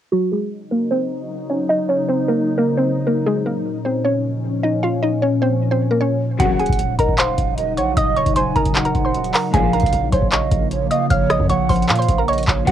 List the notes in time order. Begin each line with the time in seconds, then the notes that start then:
0.12 C#3 F#3 D#4 F#4
0.32 G#3 G#4
0.71 A#3 A#4
0.91 C4 C5
1.50 C#4 C#5
1.69 D#4 D#5
1.89 C#4 C#5
2.08 C4 C5
2.28 A#3 A#4
2.58 A#3 A#4
2.77 C4 C5
3.07 A#3 A#4
3.26 A#2 F3 G#3 C#4 G#4
3.46 A#3 A#4
3.85 C4 C5
4.05 C#4 C#5
4.63 D#4 D#5
4.83 F4 F5
5.03 D#4 D#5
5.22 C#4 C#5
5.42 C4 C5
5.71 C4 C5
5.91 A#3 A#4
6.01 C#4 C#5
6.40 D#1 D#2 C#3 F#3 D#4 F#4 F#5, kick, closed hi-hat
6.59 G#4 G#5, closed hi-hat
6.66 D#1, kick, closed hi-hat
6.73 closed hi-hat
6.79 D#1, closed hi-hat
6.99 D#1 A#4 D#5 A#5, kick, closed hi-hat
7.09 kick
7.18 C5 F5 C6, clap, closed hi-hat
7.38 D#1, kick, closed hi-hat
7.58 D#5, closed hi-hat
7.77 A#1 C#5 F#5 C#6, closed hi-hat
7.97 D#1 D#5 D#6, kick, closed hi-hat
8.16 C#5 C#6, closed hi-hat
8.26 D#1, kick, closed hi-hat
8.36 D#1 C5 G#5 C6, closed hi-hat
8.56 D#1 A#4 A#5, kick, closed hi-hat
8.65 kick, closed hi-hat
8.75 F#5, clap, closed hi-hat
8.85 A#4 A#5, closed hi-hat
8.95 D#1, kick, closed hi-hat
9.05 C5 C6
9.14 closed hi-hat
9.24 closed hi-hat
9.34 A#4 A#5, clap, open hi-hat
9.54 A#1 C#2 A#2 F3 A#3 G#4 F5 G#5, kick, closed hi-hat
9.73 A#4 A#5, closed hi-hat
9.80 A#1, kick, closed hi-hat
9.86 closed hi-hat
9.93 A#1, closed hi-hat
10.12 A#1 C5 C#5 C6, kick, closed hi-hat
10.22 kick
10.32 C#5 D#5 C#6, clap, closed hi-hat
10.52 A#1, kick, closed hi-hat
10.71 C#5, closed hi-hat
10.91 D#5 F5 D#6, closed hi-hat
11.10 A#1 C#5 F5 F6, kick, closed hi-hat
11.30 D#5 D#6, cross-stick, closed hi-hat
11.40 F2, kick
11.49 A#1 C#5 F#5 C#6, closed hi-hat
11.69 A#1 C5 C6, kick, closed hi-hat, open hi-hat
11.76 closed hi-hat
11.82 closed hi-hat
11.89 A#2 F5, clap, closed hi-hat
11.95 C6, closed hi-hat
12.00 C5, closed hi-hat
12.08 A#1, kick, closed hi-hat
12.18 A#4 A#5
12.28 C#5 D#5 C#6, closed hi-hat
12.33 closed hi-hat
12.38 closed hi-hat
12.43 closed hi-hat
12.48 A#1 C#5, kick, clap
12.67 D#1 D#2 C#3 F#3 F#4 F#5, kick, closed hi-hat